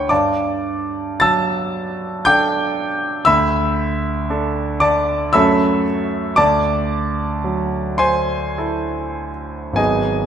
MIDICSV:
0, 0, Header, 1, 2, 480
1, 0, Start_track
1, 0, Tempo, 1113173
1, 44, Time_signature, 3, 2, 24, 8
1, 525, Tempo, 1030928
1, 2925, Tempo, 1069519
1, 3405, Tempo, 1136364
1, 3885, Tempo, 1217039
1, 4548, End_track
2, 0, Start_track
2, 0, Title_t, "Grand piano"
2, 0, Program_c, 0, 0
2, 0, Control_c, 0, 64, 127
2, 0, Note_on_c, 0, 54, 37
2, 0, Note_on_c, 0, 62, 39
2, 0, Note_on_c, 0, 64, 41
2, 0, Note_on_c, 0, 71, 59
2, 0, Note_on_c, 0, 73, 59
2, 0, Note_on_c, 0, 78, 56
2, 0, Note_on_c, 0, 79, 56
2, 0, Note_on_c, 0, 83, 74
2, 0, Note_on_c, 0, 85, 70
2, 40, Note_on_c, 0, 86, 70
2, 45, Note_on_c, 0, 74, 54
2, 45, Note_on_c, 0, 81, 54
2, 48, Note_on_c, 0, 43, 50
2, 52, Control_c, 0, 64, 0
2, 53, Note_off_c, 0, 71, 0
2, 53, Note_off_c, 0, 73, 0
2, 53, Note_off_c, 0, 79, 0
2, 53, Note_off_c, 0, 83, 0
2, 53, Note_off_c, 0, 85, 0
2, 54, Note_off_c, 0, 54, 0
2, 54, Note_off_c, 0, 62, 0
2, 56, Note_off_c, 0, 64, 0
2, 56, Note_off_c, 0, 78, 0
2, 132, Control_c, 0, 64, 127
2, 508, Note_off_c, 0, 74, 0
2, 508, Note_off_c, 0, 81, 0
2, 517, Note_on_c, 0, 93, 87
2, 523, Note_off_c, 0, 86, 0
2, 524, Note_on_c, 0, 81, 68
2, 524, Note_on_c, 0, 88, 75
2, 526, Note_on_c, 0, 54, 42
2, 987, Note_off_c, 0, 81, 0
2, 987, Note_off_c, 0, 88, 0
2, 1002, Note_off_c, 0, 93, 0
2, 1006, Note_on_c, 0, 91, 100
2, 1010, Note_on_c, 0, 86, 76
2, 1013, Note_on_c, 0, 79, 76
2, 1014, Note_on_c, 0, 62, 46
2, 1014, Note_on_c, 0, 69, 50
2, 1291, Note_off_c, 0, 54, 0
2, 1464, Note_off_c, 0, 43, 0
2, 1464, Note_off_c, 0, 86, 0
2, 1465, Note_off_c, 0, 79, 0
2, 1466, Note_off_c, 0, 62, 0
2, 1466, Note_off_c, 0, 69, 0
2, 1471, Note_on_c, 0, 88, 92
2, 1477, Note_on_c, 0, 76, 72
2, 1479, Note_on_c, 0, 83, 71
2, 1480, Note_off_c, 0, 91, 0
2, 1481, Note_on_c, 0, 38, 55
2, 1490, Control_c, 0, 64, 0
2, 1564, Control_c, 0, 64, 127
2, 1960, Note_on_c, 0, 62, 41
2, 1963, Note_on_c, 0, 69, 45
2, 2185, Note_off_c, 0, 76, 0
2, 2186, Note_off_c, 0, 83, 0
2, 2194, Note_on_c, 0, 86, 88
2, 2200, Note_off_c, 0, 88, 0
2, 2200, Note_on_c, 0, 74, 68
2, 2200, Note_on_c, 0, 81, 68
2, 2425, Note_off_c, 0, 62, 0
2, 2425, Note_off_c, 0, 74, 0
2, 2426, Note_off_c, 0, 81, 0
2, 2427, Note_off_c, 0, 38, 0
2, 2427, Note_off_c, 0, 69, 0
2, 2438, Note_on_c, 0, 88, 87
2, 2440, Note_off_c, 0, 86, 0
2, 2442, Note_on_c, 0, 83, 65
2, 2444, Note_on_c, 0, 76, 69
2, 2445, Note_on_c, 0, 42, 57
2, 2445, Note_on_c, 0, 54, 43
2, 2446, Note_on_c, 0, 57, 44
2, 2446, Note_on_c, 0, 69, 45
2, 2447, Note_on_c, 0, 61, 42
2, 2452, Control_c, 0, 64, 0
2, 2453, Note_off_c, 0, 69, 0
2, 2456, Note_on_c, 0, 69, 45
2, 2543, Control_c, 0, 64, 127
2, 2666, Note_off_c, 0, 83, 0
2, 2667, Note_off_c, 0, 76, 0
2, 2681, Note_off_c, 0, 88, 0
2, 2907, Note_off_c, 0, 54, 0
2, 2907, Note_off_c, 0, 57, 0
2, 2910, Note_off_c, 0, 61, 0
2, 2911, Note_off_c, 0, 42, 0
2, 2912, Note_off_c, 0, 69, 0
2, 2920, Note_on_c, 0, 86, 94
2, 2924, Note_on_c, 0, 81, 77
2, 2926, Note_on_c, 0, 38, 53
2, 2926, Note_on_c, 0, 74, 75
2, 2933, Control_c, 0, 64, 0
2, 3017, Control_c, 0, 64, 127
2, 3405, Note_on_c, 0, 54, 41
2, 3624, Note_off_c, 0, 81, 0
2, 3625, Note_off_c, 0, 74, 0
2, 3632, Note_on_c, 0, 84, 84
2, 3637, Note_on_c, 0, 72, 65
2, 3637, Note_on_c, 0, 80, 65
2, 3639, Note_off_c, 0, 86, 0
2, 3886, Note_on_c, 0, 64, 37
2, 3886, Note_on_c, 0, 69, 38
2, 4165, Note_off_c, 0, 54, 0
2, 4338, Note_on_c, 0, 32, 38
2, 4341, Note_off_c, 0, 72, 0
2, 4341, Note_off_c, 0, 80, 0
2, 4342, Note_on_c, 0, 54, 32
2, 4344, Note_off_c, 0, 38, 0
2, 4344, Note_off_c, 0, 64, 0
2, 4344, Note_off_c, 0, 69, 0
2, 4347, Note_on_c, 0, 59, 31
2, 4351, Note_on_c, 0, 80, 65
2, 4352, Note_on_c, 0, 63, 30
2, 4355, Note_off_c, 0, 84, 0
2, 4356, Note_on_c, 0, 75, 46
2, 4357, Note_on_c, 0, 68, 49
2, 4367, Control_c, 0, 64, 0
2, 4444, Control_c, 0, 64, 127
2, 4548, Note_off_c, 0, 32, 0
2, 4548, Note_off_c, 0, 54, 0
2, 4548, Note_off_c, 0, 59, 0
2, 4548, Note_off_c, 0, 63, 0
2, 4548, Note_off_c, 0, 68, 0
2, 4548, Note_off_c, 0, 75, 0
2, 4548, Note_off_c, 0, 80, 0
2, 4548, End_track
0, 0, End_of_file